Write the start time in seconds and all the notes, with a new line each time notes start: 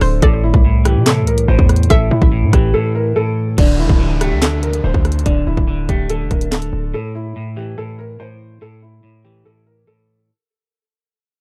Already playing: D3 A3 A4
0.01 D1 C5, cross-stick, open hi-hat
0.22 A1 A2 A4 D5, kick, closed hi-hat
0.43 G1 E4
0.54 C2, kick
0.65 A2
0.85 E3 G4, cross-stick, closed hi-hat
0.96 C3
1.06 A2 A4, snare, clap, closed hi-hat
1.22 C2
1.27 A#4, closed hi-hat
1.38 closed hi-hat
1.48 A1 A2 C5
1.59 E2, kick
1.69 cross-stick, closed hi-hat
1.76 closed hi-hat
1.83 closed hi-hat
1.90 A1 A2 A4 E5, kick, closed hi-hat
2.11 A2 E4
2.22 A1, kick
2.32 A2
2.43 A2
2.53 A1 E3 G4, kick, cross-stick, closed hi-hat
2.74 A2 A4
2.95 A#4
3.16 A2 A4
3.58 D1 D3 D4, kick, closed hi-hat, crash, downlifter
3.79 E1 E4
3.89 D1, kick
4.00 D3
4.21 A3 G4, cross-stick, closed hi-hat
4.32 D2
4.42 D3 A4, snare, clap, closed hi-hat
4.63 A#4, closed hi-hat
4.73 closed hi-hat
4.84 D1 D3 C5
4.94 D2, kick
5.05 cross-stick, closed hi-hat
5.12 closed hi-hat
5.19 closed hi-hat
5.26 D1 D3 D4, kick, closed hi-hat
5.47 D1 E4
5.57 D1, kick
5.68 D3
5.89 D1 A3 G4, kick, closed hi-hat
6.10 D3 A4, closed hi-hat
6.20 E1
6.31 D1 A#4, kick, closed hi-hat
6.41 closed hi-hat
6.52 D3 A4, snare, clap
6.62 closed hi-hat
6.73 D1
6.94 A2 A4
7.15 E4
7.36 A2
7.56 E3 G4
7.78 A2 A4
7.99 A#4
8.20 A2 C5
8.61 A2 A4
8.82 E4
9.03 A2
9.24 E3 G4
9.45 A2 A4
9.66 A#4
9.87 A2 A4